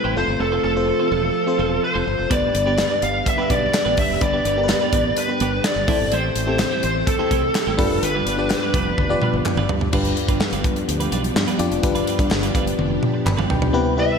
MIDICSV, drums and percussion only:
0, 0, Header, 1, 2, 480
1, 0, Start_track
1, 0, Tempo, 476190
1, 409, Time_signature, 4, 2, 24, 8
1, 14298, End_track
2, 0, Start_track
2, 0, Title_t, "Drums"
2, 2326, Note_on_c, 9, 36, 109
2, 2326, Note_on_c, 9, 42, 82
2, 2427, Note_off_c, 9, 36, 0
2, 2427, Note_off_c, 9, 42, 0
2, 2567, Note_on_c, 9, 42, 74
2, 2668, Note_off_c, 9, 42, 0
2, 2803, Note_on_c, 9, 39, 69
2, 2806, Note_on_c, 9, 38, 104
2, 2806, Note_on_c, 9, 42, 86
2, 2904, Note_off_c, 9, 39, 0
2, 2907, Note_off_c, 9, 38, 0
2, 2907, Note_off_c, 9, 42, 0
2, 3047, Note_on_c, 9, 42, 75
2, 3148, Note_off_c, 9, 42, 0
2, 3289, Note_on_c, 9, 36, 83
2, 3291, Note_on_c, 9, 42, 94
2, 3390, Note_off_c, 9, 36, 0
2, 3391, Note_off_c, 9, 42, 0
2, 3528, Note_on_c, 9, 36, 88
2, 3529, Note_on_c, 9, 42, 69
2, 3629, Note_off_c, 9, 36, 0
2, 3630, Note_off_c, 9, 42, 0
2, 3770, Note_on_c, 9, 38, 116
2, 3770, Note_on_c, 9, 42, 88
2, 3771, Note_on_c, 9, 39, 92
2, 3871, Note_off_c, 9, 38, 0
2, 3871, Note_off_c, 9, 42, 0
2, 3872, Note_off_c, 9, 39, 0
2, 4004, Note_on_c, 9, 46, 64
2, 4010, Note_on_c, 9, 36, 89
2, 4105, Note_off_c, 9, 46, 0
2, 4110, Note_off_c, 9, 36, 0
2, 4245, Note_on_c, 9, 42, 83
2, 4248, Note_on_c, 9, 36, 115
2, 4346, Note_off_c, 9, 42, 0
2, 4349, Note_off_c, 9, 36, 0
2, 4489, Note_on_c, 9, 42, 70
2, 4589, Note_off_c, 9, 42, 0
2, 4726, Note_on_c, 9, 39, 70
2, 4727, Note_on_c, 9, 38, 108
2, 4727, Note_on_c, 9, 42, 90
2, 4827, Note_off_c, 9, 38, 0
2, 4827, Note_off_c, 9, 39, 0
2, 4827, Note_off_c, 9, 42, 0
2, 4966, Note_on_c, 9, 36, 90
2, 4966, Note_on_c, 9, 42, 69
2, 5067, Note_off_c, 9, 36, 0
2, 5067, Note_off_c, 9, 42, 0
2, 5207, Note_on_c, 9, 42, 95
2, 5308, Note_off_c, 9, 42, 0
2, 5446, Note_on_c, 9, 42, 70
2, 5547, Note_off_c, 9, 42, 0
2, 5687, Note_on_c, 9, 38, 118
2, 5687, Note_on_c, 9, 42, 84
2, 5693, Note_on_c, 9, 39, 97
2, 5787, Note_off_c, 9, 42, 0
2, 5788, Note_off_c, 9, 38, 0
2, 5794, Note_off_c, 9, 39, 0
2, 5926, Note_on_c, 9, 46, 64
2, 5927, Note_on_c, 9, 36, 99
2, 6027, Note_off_c, 9, 46, 0
2, 6028, Note_off_c, 9, 36, 0
2, 6165, Note_on_c, 9, 42, 85
2, 6266, Note_off_c, 9, 42, 0
2, 6406, Note_on_c, 9, 42, 72
2, 6507, Note_off_c, 9, 42, 0
2, 6643, Note_on_c, 9, 38, 112
2, 6643, Note_on_c, 9, 39, 71
2, 6643, Note_on_c, 9, 42, 93
2, 6744, Note_off_c, 9, 38, 0
2, 6744, Note_off_c, 9, 39, 0
2, 6744, Note_off_c, 9, 42, 0
2, 6884, Note_on_c, 9, 42, 75
2, 6985, Note_off_c, 9, 42, 0
2, 7128, Note_on_c, 9, 36, 90
2, 7131, Note_on_c, 9, 42, 92
2, 7229, Note_off_c, 9, 36, 0
2, 7231, Note_off_c, 9, 42, 0
2, 7368, Note_on_c, 9, 36, 84
2, 7369, Note_on_c, 9, 42, 66
2, 7469, Note_off_c, 9, 36, 0
2, 7470, Note_off_c, 9, 42, 0
2, 7610, Note_on_c, 9, 39, 94
2, 7611, Note_on_c, 9, 42, 87
2, 7612, Note_on_c, 9, 38, 115
2, 7711, Note_off_c, 9, 39, 0
2, 7712, Note_off_c, 9, 42, 0
2, 7713, Note_off_c, 9, 38, 0
2, 7849, Note_on_c, 9, 36, 101
2, 7849, Note_on_c, 9, 46, 66
2, 7950, Note_off_c, 9, 36, 0
2, 7950, Note_off_c, 9, 46, 0
2, 8092, Note_on_c, 9, 42, 86
2, 8193, Note_off_c, 9, 42, 0
2, 8333, Note_on_c, 9, 42, 73
2, 8433, Note_off_c, 9, 42, 0
2, 8566, Note_on_c, 9, 39, 72
2, 8573, Note_on_c, 9, 38, 108
2, 8573, Note_on_c, 9, 42, 90
2, 8666, Note_off_c, 9, 39, 0
2, 8674, Note_off_c, 9, 38, 0
2, 8674, Note_off_c, 9, 42, 0
2, 8809, Note_on_c, 9, 36, 93
2, 8812, Note_on_c, 9, 42, 73
2, 8910, Note_off_c, 9, 36, 0
2, 8913, Note_off_c, 9, 42, 0
2, 9052, Note_on_c, 9, 36, 87
2, 9052, Note_on_c, 9, 48, 56
2, 9152, Note_off_c, 9, 48, 0
2, 9153, Note_off_c, 9, 36, 0
2, 9290, Note_on_c, 9, 47, 67
2, 9390, Note_off_c, 9, 47, 0
2, 9530, Note_on_c, 9, 45, 85
2, 9531, Note_on_c, 9, 39, 102
2, 9631, Note_off_c, 9, 45, 0
2, 9632, Note_off_c, 9, 39, 0
2, 9651, Note_on_c, 9, 45, 73
2, 9751, Note_off_c, 9, 45, 0
2, 9770, Note_on_c, 9, 43, 100
2, 9871, Note_off_c, 9, 43, 0
2, 9891, Note_on_c, 9, 43, 86
2, 9992, Note_off_c, 9, 43, 0
2, 10007, Note_on_c, 9, 49, 97
2, 10011, Note_on_c, 9, 36, 119
2, 10107, Note_off_c, 9, 49, 0
2, 10112, Note_off_c, 9, 36, 0
2, 10129, Note_on_c, 9, 42, 52
2, 10230, Note_off_c, 9, 42, 0
2, 10250, Note_on_c, 9, 42, 70
2, 10351, Note_off_c, 9, 42, 0
2, 10367, Note_on_c, 9, 36, 89
2, 10368, Note_on_c, 9, 42, 58
2, 10468, Note_off_c, 9, 36, 0
2, 10469, Note_off_c, 9, 42, 0
2, 10489, Note_on_c, 9, 38, 114
2, 10490, Note_on_c, 9, 39, 71
2, 10590, Note_off_c, 9, 38, 0
2, 10590, Note_off_c, 9, 39, 0
2, 10610, Note_on_c, 9, 42, 57
2, 10711, Note_off_c, 9, 42, 0
2, 10728, Note_on_c, 9, 42, 76
2, 10729, Note_on_c, 9, 36, 92
2, 10829, Note_off_c, 9, 42, 0
2, 10830, Note_off_c, 9, 36, 0
2, 10848, Note_on_c, 9, 42, 50
2, 10949, Note_off_c, 9, 42, 0
2, 10974, Note_on_c, 9, 42, 95
2, 11075, Note_off_c, 9, 42, 0
2, 11092, Note_on_c, 9, 42, 54
2, 11193, Note_off_c, 9, 42, 0
2, 11211, Note_on_c, 9, 42, 73
2, 11312, Note_off_c, 9, 42, 0
2, 11333, Note_on_c, 9, 42, 47
2, 11434, Note_off_c, 9, 42, 0
2, 11452, Note_on_c, 9, 38, 116
2, 11457, Note_on_c, 9, 39, 97
2, 11553, Note_off_c, 9, 38, 0
2, 11558, Note_off_c, 9, 39, 0
2, 11570, Note_on_c, 9, 42, 51
2, 11670, Note_off_c, 9, 42, 0
2, 11687, Note_on_c, 9, 42, 70
2, 11787, Note_off_c, 9, 42, 0
2, 11810, Note_on_c, 9, 42, 43
2, 11910, Note_off_c, 9, 42, 0
2, 11928, Note_on_c, 9, 42, 90
2, 11929, Note_on_c, 9, 36, 116
2, 12029, Note_off_c, 9, 42, 0
2, 12030, Note_off_c, 9, 36, 0
2, 12050, Note_on_c, 9, 42, 54
2, 12151, Note_off_c, 9, 42, 0
2, 12171, Note_on_c, 9, 42, 74
2, 12272, Note_off_c, 9, 42, 0
2, 12287, Note_on_c, 9, 36, 95
2, 12290, Note_on_c, 9, 42, 57
2, 12388, Note_off_c, 9, 36, 0
2, 12391, Note_off_c, 9, 42, 0
2, 12403, Note_on_c, 9, 39, 75
2, 12411, Note_on_c, 9, 38, 111
2, 12411, Note_on_c, 9, 54, 65
2, 12504, Note_off_c, 9, 39, 0
2, 12512, Note_off_c, 9, 38, 0
2, 12512, Note_off_c, 9, 54, 0
2, 12530, Note_on_c, 9, 42, 59
2, 12631, Note_off_c, 9, 42, 0
2, 12648, Note_on_c, 9, 36, 91
2, 12652, Note_on_c, 9, 42, 72
2, 12749, Note_off_c, 9, 36, 0
2, 12752, Note_off_c, 9, 42, 0
2, 12775, Note_on_c, 9, 42, 53
2, 12876, Note_off_c, 9, 42, 0
2, 12890, Note_on_c, 9, 48, 57
2, 12990, Note_off_c, 9, 48, 0
2, 13131, Note_on_c, 9, 47, 72
2, 13232, Note_off_c, 9, 47, 0
2, 13371, Note_on_c, 9, 45, 92
2, 13372, Note_on_c, 9, 39, 98
2, 13472, Note_off_c, 9, 45, 0
2, 13473, Note_off_c, 9, 39, 0
2, 13492, Note_on_c, 9, 45, 76
2, 13593, Note_off_c, 9, 45, 0
2, 13608, Note_on_c, 9, 43, 97
2, 13709, Note_off_c, 9, 43, 0
2, 13729, Note_on_c, 9, 43, 91
2, 13830, Note_off_c, 9, 43, 0
2, 14298, End_track
0, 0, End_of_file